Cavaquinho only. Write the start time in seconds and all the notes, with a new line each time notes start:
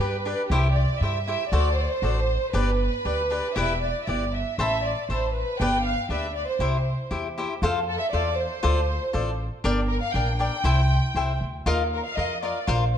0.00 D4 G4 B4 D5
0.25 D4 G4 B4 D5
0.51 E4 G4 C5 E5
1.02 E4 G4 C5 E5
1.27 E4 G4 C5 E5
1.53 F#4 A4 C5 D5
2.03 F#4 A4 C5 D5
2.53 D4 G4 B4 D5
3.05 D4 G4 B4 D5
3.30 D4 G4 B4 D5
3.56 E4 G4 B4 D5
4.07 E4 G4 B4 D5
4.59 C5 E5 A5 B5
5.10 C5 E5 A5 B5
5.61 D4 G4 B4 D5
6.10 D4 G4 B4 D5
6.60 E4 G4 C5 E5
7.11 E4 G4 C5 E5
7.38 E4 G4 C5 E5
7.63 F4 A4 C5 F5
8.13 F4 A4 C5 F5
8.63 F4 A4 C5 D5
9.13 F4 A4 C5 D5
9.64 D4 A#4 D5 G5
10.15 D4 A#4 D5 G5
10.39 D4 A#4 D5 G5
10.64 E4 C5 E5 G5
11.15 E4 C5 E5 G5
11.66 F4 A#4 D#5 F5
12.17 F4 A#4 D#5 F5
12.43 F4 A#4 D#5 F5
12.67 F4 A#4 C5 F5